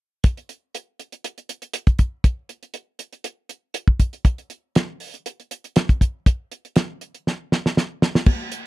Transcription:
0.24 kick medium
0.24 closed hi-hat medium
0.37 closed hi-hat soft
0.49 closed hi-hat soft
0.75 closed hi-hat medium
0.99 closed hi-hat soft
1.12 closed hi-hat soft
1.24 closed hi-hat medium
1.38 closed hi-hat soft
1.49 closed hi-hat soft
1.62 closed hi-hat soft
1.73 closed hi-hat medium
1.87 kick medium
1.87 closed hi-hat soft
1.99 kick medium
1.99 closed hi-hat soft
2.24 kick medium
2.24 closed hi-hat medium
2.49 closed hi-hat soft
2.63 closed hi-hat soft
2.74 closed hi-hat medium
2.99 closed hi-hat soft
3.13 closed hi-hat soft
3.24 closed hi-hat medium
3.49 closed hi-hat soft
3.74 closed hi-hat medium
3.88 kick medium
4.00 kick medium
4.00 closed hi-hat soft
4.13 closed hi-hat soft
4.25 kick medium
4.25 closed hi-hat medium
4.38 closed hi-hat soft
4.50 closed hi-hat soft
4.75 snare medium
4.75 closed hi-hat medium
5.00 open hi-hat medium
5.14 closed hi-hat soft
5.26 closed hi-hat medium
5.40 closed hi-hat soft
5.51 closed hi-hat medium
5.64 closed hi-hat soft
5.76 snare medium
5.76 closed hi-hat medium
5.89 kick medium
5.89 closed hi-hat soft
6.01 kick medium
6.01 closed hi-hat medium
6.26 kick medium
6.26 closed hi-hat medium
6.52 closed hi-hat soft
6.65 closed hi-hat soft
6.76 snare medium
6.76 closed hi-hat medium
7.01 closed hi-hat soft
7.15 closed hi-hat soft
7.27 snare soft
7.52 snare medium
7.66 snare soft
7.77 snare medium
8.02 snare medium
8.15 snare medium
8.26 kick loud
8.26 crash medium
8.26 muted conga soft
8.52 closed hi-hat medium

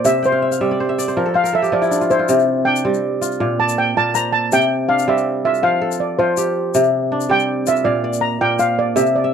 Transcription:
0.00 0.15 C4 medium
0.00 0.24 F4 medium
0.00 0.75 A#4 medium
0.00 0.80 C5 medium
0.05 1.21 C3 medium
0.05 0.24 E5 medium
0.05 shaker medium
0.23 1.14 C5 medium
0.23 1.16 G5 medium
0.23 shaker soft
0.32 0.51 F5 medium
0.42 0.60 E5 medium
0.52 0.95 F5 medium
0.52 shaker soft
0.61 1.21 G3 medium
0.61 0.89 E5 medium
0.71 0.98 D5 medium
0.80 1.08 C5 medium
0.89 1.23 E5 medium
0.98 2.09 D5 medium
0.98 shaker medium
1.08 1.34 C5 medium
1.17 1.71 F3 medium
1.17 1.43 A#4 medium
1.26 1.50 A4 medium
1.34 2.53 C5 medium
1.34 1.53 F5 medium
1.44 2.71 A#4 medium
1.44 shaker medium
1.53 2.85 A4 medium
1.53 1.74 E5 medium
1.62 3.04 G4 medium
1.62 shaker soft
1.72 2.33 F3 medium
1.72 2.01 F4 medium
1.72 2.11 D5 medium
1.82 2.07 E4 medium
1.82 shaker soft
1.91 2.66 D4 medium
1.91 shaker medium
2.01 2.19 F4 medium
2.01 shaker soft
2.10 3.27 E4 medium
2.10 2.68 C5 medium
2.10 shaker soft
2.19 3.21 F4 medium
2.29 3.45 C3 medium
2.29 shaker medium
2.39 shaker soft
2.65 4.34 D4 medium
2.65 3.00 G5 medium
2.76 shaker soft
2.85 3.45 G3 medium
2.85 4.65 C4 medium
2.94 shaker soft
3.21 4.73 F4 medium
3.21 shaker medium
3.32 shaker soft
3.40 3.96 A#2 medium
3.40 4.40 F5 medium
3.60 4.71 D5 medium
3.60 3.76 A5 medium
3.69 shaker medium
3.78 3.97 G5 medium
3.97 4.57 A#2 medium
3.97 5.24 A#4 medium
3.97 4.14 A5 loud
4.15 5.34 C5 medium
4.15 4.34 A#5 medium
4.15 shaker medium
4.33 4.50 A5 medium
4.52 5.68 C3 medium
4.52 4.87 G5 loud
4.52 shaker medium
4.89 6.57 D4 medium
4.89 5.08 F5 medium
4.99 shaker medium
5.08 5.68 G3 medium
5.08 6.88 C4 medium
5.08 5.43 E5 medium
5.18 shaker soft
5.45 6.19 F4 medium
5.45 5.53 E5 medium
5.54 shaker soft
5.63 6.18 F3 medium
5.63 6.82 C5 medium
5.63 5.97 F5 medium
5.82 7.13 A4 medium
5.92 shaker medium
6.00 6.17 D5 medium
6.19 6.79 F3 medium
6.19 7.66 F4 medium
6.19 7.07 C5 medium
6.37 7.79 G4 medium
6.37 shaker medium
6.74 7.90 C3 medium
6.74 shaker medium
6.84 shaker soft
7.12 8.80 D4 medium
7.21 shaker soft
7.29 7.90 G3 medium
7.29 9.10 C4 medium
7.29 7.69 G5 loud
7.39 shaker soft
7.67 9.18 F4 medium
7.67 7.87 E5 medium
7.67 shaker medium
7.76 shaker soft
7.85 8.40 A#2 medium
7.85 8.02 D5 medium
7.85 8.85 F5 medium
8.04 9.15 D5 medium
8.13 shaker soft
8.21 8.41 A#5 medium
8.41 9.01 A#2 medium
8.41 9.34 A#4 medium
8.41 8.58 G5 medium
8.59 9.34 C5 medium
8.59 8.79 F5 medium
8.59 shaker soft
8.79 8.96 D5 medium
8.96 9.34 C3 medium
8.96 9.13 E5 medium
8.96 shaker medium
9.06 shaker soft
9.16 9.33 D5 medium
9.24 9.34 E5 medium

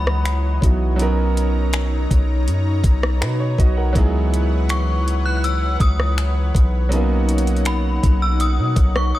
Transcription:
0.00 0.59 C#2 loud
0.00 0.96 E3 medium
0.00 0.57 F#3 medium
0.00 0.57 B3 medium
0.00 0.58 D#4 medium
0.00 0.59 E4 medium
0.00 0.60 G#4 medium
0.00 9.19 C#5 medium
0.00 0.96 D#5 medium
0.00 0.96 F#5 medium
0.00 0.59 B5 medium
0.07 cross-stick loud
0.25 finger snap loud
0.25 closed hi-hat medium
0.61 2.06 B1 loud
0.61 0.95 F#3 soft
0.61 0.96 B3 soft
0.61 0.99 D#4 soft
0.61 1.00 E4 soft
0.61 1.00 F#4 soft
0.61 kick medium
0.61 closed hi-hat medium
0.96 3.90 F#3 medium
0.96 3.91 B3 medium
0.96 3.91 C#4 medium
0.96 3.92 D#4 medium
0.96 3.92 A#5 medium
0.96 closed hi-hat medium
1.01 2.81 D#4 medium
1.01 2.82 A#4 loud
1.37 closed hi-hat medium
1.73 finger snap loud
1.73 closed hi-hat medium
2.11 2.49 B1 loud
2.11 kick medium
2.11 closed hi-hat medium
2.47 2.83 F#2 loud
2.47 closed hi-hat medium
2.84 3.23 B1 loud
2.84 kick medium
2.84 closed hi-hat medium
3.03 cross-stick loud
3.21 3.57 B2 loud
3.21 3.39 D#4 medium
3.21 3.39 B4 medium
3.21 finger snap loud
3.21 closed hi-hat medium
3.40 3.58 C#5 medium
3.58 3.94 B1 loud
3.58 3.76 F#4 medium
3.58 3.76 D#5 medium
3.58 kick loud
3.58 closed hi-hat medium
3.77 4.12 A#4 medium
3.77 4.12 F#5 medium
3.93 5.77 C#2 loud
3.93 6.89 E3 medium
3.93 6.86 F#3 medium
3.93 6.87 B3 medium
3.93 6.88 D#4 medium
3.93 6.89 B4 medium
3.93 6.89 F#5 medium
3.93 kick loud
3.93 closed hi-hat medium
3.97 6.89 E4 medium
3.97 6.89 G#4 medium
4.34 closed hi-hat medium
4.69 5.27 C#6 medium
4.69 finger snap loud
4.69 closed hi-hat medium
5.08 closed hi-hat medium
5.26 5.31 F#6 loud
5.37 5.44 F#6 medium
5.44 5.82 E6 loud
5.44 closed hi-hat medium
5.80 6.51 C#2 loud
5.80 6.51 D#6 medium
5.80 kick loud
5.80 closed hi-hat medium
6.00 cross-stick medium
6.18 finger snap loud
6.18 closed hi-hat medium
6.55 7.99 B1 loud
6.55 kick loud
6.55 closed hi-hat medium
6.89 9.19 F#3 medium
6.89 9.19 B3 medium
6.89 9.19 C#4 medium
6.89 9.19 D#4 medium
6.89 9.19 F#5 medium
6.89 closed hi-hat medium
6.93 9.19 A#3 loud
6.93 9.19 D#4 medium
7.29 closed hi-hat medium
7.38 closed hi-hat medium
7.47 closed hi-hat soft
7.56 closed hi-hat soft
7.65 8.23 B5 medium
7.65 finger snap loud
7.65 closed hi-hat medium
8.03 8.60 B1 loud
8.03 kick medium
8.03 closed hi-hat medium
8.22 8.41 E6 loud
8.40 8.92 D#6 loud
8.40 closed hi-hat medium
8.59 8.76 B2 loud
8.76 9.12 B1 loud
8.76 kick medium
8.76 closed hi-hat medium
8.96 9.13 C#6 medium
8.96 cross-stick loud
9.15 9.19 D#6 medium

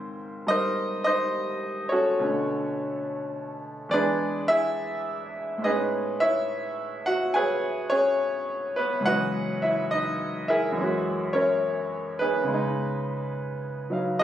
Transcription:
0.00 2.19 G#2 soft
0.00 2.20 D#3 soft
0.00 2.20 A#3 soft
0.00 0.16 C4 medium
0.00 0.49 D#4 medium
0.00 0.16 F4 medium
0.00 0.15 C5 medium
0.47 2.19 G3 soft
0.47 1.02 D#4 medium
0.47 1.02 A#4 medium
0.47 1.02 C5 medium
0.47 0.61 D#5 loud
1.04 1.88 D#4 medium
1.04 1.87 C5 medium
1.04 1.93 D#5 loud
1.89 2.19 C#4 medium
1.89 3.59 F#4 medium
1.89 3.59 A4 medium
1.89 3.57 C#5 medium
2.19 3.91 B2 medium
2.19 3.92 D3 medium
2.19 3.91 A3 soft
2.19 3.91 C#4 soft
3.89 5.62 E2 medium
3.89 5.62 E3 soft
3.89 5.60 G#3 medium
3.89 4.44 D5 medium
3.93 4.45 D4 medium
3.93 4.45 G#4 medium
3.93 4.45 B4 medium
4.48 5.30 E4 medium
4.48 5.30 G#4 medium
4.48 5.30 E5 loud
5.58 9.03 A2 medium
5.58 9.05 G#3 soft
5.64 8.77 B3 soft
5.64 6.16 D#4 medium
5.64 6.16 G#4 medium
5.64 6.16 B4 medium
5.64 5.77 D#5 medium
5.69 7.90 C#4 medium
6.20 7.02 E4 medium
6.20 7.02 C#5 medium
6.20 7.01 E5 loud
7.06 7.33 F#4 medium
7.06 7.33 F#5 medium
7.34 7.87 G#4 medium
7.34 7.87 B4 medium
7.34 7.87 C#5 medium
7.34 7.47 G#5 loud
7.90 8.73 C#4 medium
7.90 8.73 G#4 medium
7.90 8.72 C#5 loud
8.76 8.85 B3 medium
8.76 8.83 B4 medium
9.00 10.74 C#2 medium
9.00 10.75 G#2 medium
9.05 10.73 E3 medium
9.05 10.77 F#3 soft
9.05 9.59 F#4 medium
9.05 9.59 B4 medium
9.05 9.59 D#5 medium
9.05 9.58 F#5 loud
9.09 10.78 B3 soft
9.09 10.78 C#4 medium
9.62 9.90 E4 medium
9.62 9.89 E5 medium
9.91 10.05 D#4 medium
9.91 10.04 D#5 loud
10.48 11.30 E4 medium
10.48 11.30 G#4 medium
10.48 11.30 A#4 medium
10.48 11.29 E5 medium
10.72 12.45 F#2 medium
10.72 12.47 E3 soft
10.77 12.45 G#3 medium
10.77 11.33 C#4 soft
10.83 12.51 F#4 medium
11.33 12.15 C#4 medium
11.33 12.15 A#4 medium
11.33 12.14 C#5 medium
12.19 13.87 B3 medium
12.19 12.52 D#4 medium
12.19 13.87 G#4 medium
12.19 13.86 B4 medium
12.43 14.23 C#3 soft
12.43 14.23 G#3 soft
12.54 13.90 D#4 medium
13.90 14.23 F#3 soft
13.90 14.20 D#4 soft
13.90 14.23 F5 soft
14.19 14.23 D#5 loud

